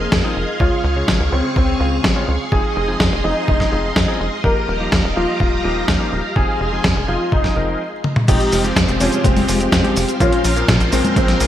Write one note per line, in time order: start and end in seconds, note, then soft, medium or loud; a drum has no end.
0.00 0.21 F3 medium
0.00 0.51 A#3 medium
0.00 0.21 C4 medium
0.00 0.21 D#4 medium
0.00 0.21 G#4 medium
0.00 4.40 G#4 medium
0.00 0.56 D#5 medium
0.00 4.40 F5 medium
0.00 0.58 C6 medium
0.12 0.22 F2 medium
0.12 kick loud
0.12 snare loud
0.24 0.43 F3 medium
0.24 0.43 C4 medium
0.24 0.43 D#4 medium
0.24 0.43 G#4 medium
0.36 0.46 F1 medium
0.60 0.70 C#2 loud
0.60 0.93 C#3 medium
0.60 0.93 G#3 medium
0.60 0.93 C#4 medium
0.60 0.92 F4 loud
0.60 0.93 F4 medium
0.60 0.93 C#5 medium
0.60 2.50 C#6 medium
0.60 kick loud
0.84 1.03 C#2 loud
0.96 1.15 C#3 medium
0.96 1.15 G#3 medium
0.96 1.15 C#4 medium
0.96 1.15 F4 medium
0.96 1.15 C#5 medium
1.08 1.18 G#1 loud
1.08 kick loud
1.08 snare loud
1.20 1.30 C#2 loud
1.32 1.42 C#2 loud
1.32 1.77 C#3 medium
1.32 1.77 G#3 medium
1.32 1.53 C4 medium
1.32 1.77 C#4 medium
1.32 1.77 F4 medium
1.32 1.77 C#5 medium
1.56 1.76 C#2 medium
1.56 2.42 C4 medium
1.56 kick loud
1.80 2.00 C#2 medium
1.80 2.13 C#3 medium
1.80 2.13 G#3 medium
1.80 2.13 F4 medium
1.80 2.13 F5 medium
2.04 2.14 G#1 medium
2.04 kick loud
2.04 snare loud
2.16 2.35 C#3 medium
2.16 2.35 G#3 medium
2.16 2.35 C#4 medium
2.16 2.35 F4 medium
2.16 2.35 C#5 medium
2.28 2.38 C#2 medium
2.52 2.62 F1 loud
2.52 2.85 F3 medium
2.52 2.85 C4 medium
2.52 2.85 D#4 medium
2.52 2.84 G#4 loud
2.52 2.85 G#4 medium
2.52 7.76 D#5 medium
2.52 4.42 C6 medium
2.52 kick loud
2.76 2.96 F1 loud
2.88 3.07 F3 medium
2.88 3.07 C4 medium
2.88 3.07 D#4 medium
2.88 3.07 G#4 medium
3.00 3.10 F2 loud
3.00 kick loud
3.00 snare loud
3.12 3.22 F1 loud
3.24 3.34 F1 medium
3.24 3.69 F3 medium
3.24 3.69 C4 medium
3.24 3.45 D#4 medium
3.24 3.69 D#4 medium
3.24 3.69 G#4 medium
3.48 3.68 F1 loud
3.48 4.34 D#4 medium
3.48 kick loud
3.60 kick medium
3.60 snare soft
3.72 3.92 F1 medium
3.72 4.05 F3 medium
3.72 4.05 C4 medium
3.72 4.05 D#4 medium
3.72 4.05 G#4 medium
3.96 4.06 F2 medium
3.96 kick loud
3.96 snare loud
4.08 4.26 F3 medium
4.08 4.27 C4 medium
4.08 4.26 D#4 medium
4.08 4.26 G#4 medium
4.20 4.30 F1 medium
4.44 4.54 D#1 loud
4.44 4.77 F3 medium
4.44 4.77 A#3 medium
4.44 4.77 D#4 medium
4.44 6.34 G4 medium
4.44 4.77 G4 medium
4.44 4.76 A#4 loud
4.44 7.77 F5 medium
4.44 6.34 A#5 medium
4.44 kick loud
4.68 4.88 D#1 loud
4.80 4.99 F3 medium
4.80 4.99 A#3 medium
4.80 4.99 D#4 medium
4.80 4.99 G4 medium
4.92 5.02 D#2 loud
4.92 kick loud
4.92 snare loud
5.04 5.14 D#1 loud
5.16 5.26 D#1 loud
5.16 5.61 F3 medium
5.16 5.61 A#3 medium
5.16 5.61 D#4 medium
5.16 5.37 F4 medium
5.16 5.61 G4 medium
5.40 5.60 D#1 loud
5.40 6.26 F4 medium
5.40 kick loud
5.64 5.84 D#1 medium
5.64 5.97 F3 medium
5.64 5.97 A#3 medium
5.64 5.97 D#4 medium
5.64 5.97 G4 medium
5.88 5.98 D#2 medium
5.88 kick loud
5.88 snare loud
6.00 6.19 F3 medium
6.00 6.19 A#3 medium
6.00 6.19 D#4 medium
6.00 6.19 G4 medium
6.12 6.22 D#1 medium
6.36 6.46 F1 loud
6.36 6.69 F3 medium
6.36 6.69 C4 medium
6.36 6.69 D#4 medium
6.36 7.79 G#4 medium
6.36 6.68 G#4 loud
6.36 6.69 G#4 medium
6.36 7.79 C6 medium
6.36 kick loud
6.60 6.79 F1 loud
6.72 6.91 F3 medium
6.72 6.91 C4 medium
6.72 6.91 D#4 medium
6.72 6.91 G#4 medium
6.84 6.94 F2 loud
6.84 kick loud
6.84 snare loud
6.96 7.06 F1 loud
7.08 7.18 F1 loud
7.08 7.53 F3 medium
7.08 7.53 C4 medium
7.08 7.53 D#4 medium
7.08 7.29 F4 medium
7.08 7.53 G#4 medium
7.32 7.52 F1 loud
7.32 7.80 D#4 medium
7.32 kick loud
7.44 kick medium
7.44 snare soft
7.56 7.76 F1 medium
7.56 7.80 F3 medium
7.56 7.80 C4 medium
7.56 7.80 D#4 medium
7.56 7.80 A#4 medium
8.04 high tom medium
8.16 mid tom medium
8.28 8.38 F1 loud
8.28 8.61 F3 medium
8.28 8.61 G#3 medium
8.28 10.18 G#3 medium
8.28 8.61 C4 medium
8.28 10.18 C4 medium
8.28 8.60 D#4 medium
8.28 11.47 F4 medium
8.28 8.60 G4 loud
8.28 10.18 G4 medium
8.28 8.61 G4 medium
8.28 11.47 F5 medium
8.28 kick loud
8.28 closed hi-hat medium
8.28 crash loud
8.28 cabasa soft
8.40 closed hi-hat soft
8.52 8.72 F1 loud
8.52 open hi-hat loud
8.52 cabasa medium
8.64 8.83 F3 medium
8.64 8.83 G#3 medium
8.64 8.83 C4 medium
8.64 8.83 G4 medium
8.64 closed hi-hat soft
8.64 cabasa soft
8.76 8.86 F2 loud
8.76 kick loud
8.76 snare loud
8.76 closed hi-hat medium
8.76 cabasa soft
8.88 8.98 F1 loud
8.88 closed hi-hat soft
8.88 cabasa soft
9.00 9.10 F1 loud
9.00 9.45 F3 medium
9.00 9.21 F3 medium
9.00 9.45 G#3 medium
9.00 9.45 C4 medium
9.00 9.21 C#4 medium
9.00 9.45 G4 medium
9.00 open hi-hat loud
9.00 cabasa medium
9.12 closed hi-hat soft
9.12 cabasa soft
9.24 9.44 F1 loud
9.24 10.11 G#3 medium
9.24 10.11 C4 loud
9.24 kick loud
9.24 closed hi-hat medium
9.24 cabasa soft
9.37 open hi-hat medium
9.37 high conga medium
9.48 9.68 F1 medium
9.48 9.81 F3 medium
9.48 9.81 G#3 medium
9.48 9.81 C4 medium
9.48 9.81 G4 medium
9.48 open hi-hat loud
9.48 cabasa medium
9.60 closed hi-hat soft
9.60 cabasa soft
9.72 9.82 F2 medium
9.72 kick loud
9.72 snare loud
9.72 closed hi-hat medium
9.72 cabasa soft
9.84 10.03 F3 medium
9.84 10.03 G#3 medium
9.84 10.03 C4 medium
9.84 10.03 G4 medium
9.84 closed hi-hat soft
9.84 high conga medium
9.96 10.06 F1 medium
9.96 open hi-hat loud
9.96 cabasa medium
10.09 closed hi-hat soft
10.09 cabasa soft
10.20 10.30 A#1 loud
10.20 10.53 A#2 medium
10.20 10.53 F3 medium
10.20 10.53 C#4 medium
10.20 10.52 C#4 medium
10.20 10.52 F4 loud
10.20 10.53 A#4 medium
10.20 11.47 A#4 medium
10.20 10.53 C5 medium
10.20 11.47 C5 medium
10.20 kick loud
10.20 closed hi-hat medium
10.20 cabasa soft
10.32 closed hi-hat soft
10.44 10.64 A#1 loud
10.44 open hi-hat loud
10.44 cabasa medium
10.56 10.75 A#2 medium
10.56 10.75 F3 medium
10.56 10.75 C4 medium
10.56 10.75 C#4 medium
10.56 10.75 A#4 medium
10.56 closed hi-hat soft
10.56 cabasa soft
10.68 10.78 A#2 loud
10.68 kick loud
10.68 snare loud
10.68 closed hi-hat medium
10.68 cabasa soft
10.80 10.90 A#1 loud
10.80 closed hi-hat soft
10.80 cabasa soft
10.92 11.02 A#1 loud
10.92 11.37 A#2 medium
10.92 11.37 F3 medium
10.92 11.13 G#3 medium
10.92 11.37 C4 medium
10.92 11.13 C4 medium
10.92 11.37 C#4 medium
10.92 11.37 A#4 medium
10.92 open hi-hat loud
10.92 cabasa medium
11.04 closed hi-hat soft
11.04 high conga medium
11.04 cabasa soft
11.16 11.36 A#1 loud
11.16 11.47 G#3 medium
11.16 11.47 C4 medium
11.16 kick loud
11.16 closed hi-hat medium
11.16 cabasa soft
11.28 snare soft
11.28 closed hi-hat soft
11.40 11.47 A#1 medium
11.40 11.47 A#2 medium
11.40 11.47 C#3 medium
11.40 11.47 F3 medium
11.40 11.47 C4 medium
11.40 11.47 A#4 medium
11.40 open hi-hat loud
11.40 cabasa medium